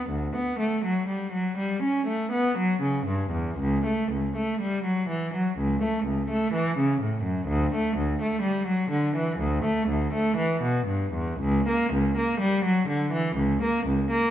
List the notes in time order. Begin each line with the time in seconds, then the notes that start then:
0.10 D2
0.36 B3
0.59 A3
0.84 F#3
1.08 G3
1.33 F#3
1.58 G3
1.83 C#4
2.07 A3
2.32 B3
2.58 F#3
2.81 C#3
3.06 G2
3.31 E2
3.59 C#2
3.86 A3
4.12 C#2
4.36 A3
4.61 G3
4.84 F#3
5.09 E3
5.34 F#3
5.58 C#2
5.82 A3
6.06 C#2
6.30 A3
6.53 E3
6.78 C#3
7.02 A2
7.23 F#2
7.48 D2
7.74 A3
7.97 D2
8.21 A3
8.42 G3
8.68 F#3
8.90 D3
9.15 E3
9.39 D2
9.64 A3
9.89 D2
10.13 A3
10.37 E3
10.62 B2
10.87 G2
11.13 E2
11.40 C#2
11.68 A#3
11.93 C#2
12.17 A#3
12.40 G3
12.65 F#3
12.88 D3
13.12 E3
13.36 C#2
13.63 A#3
13.87 C#2
14.11 A#3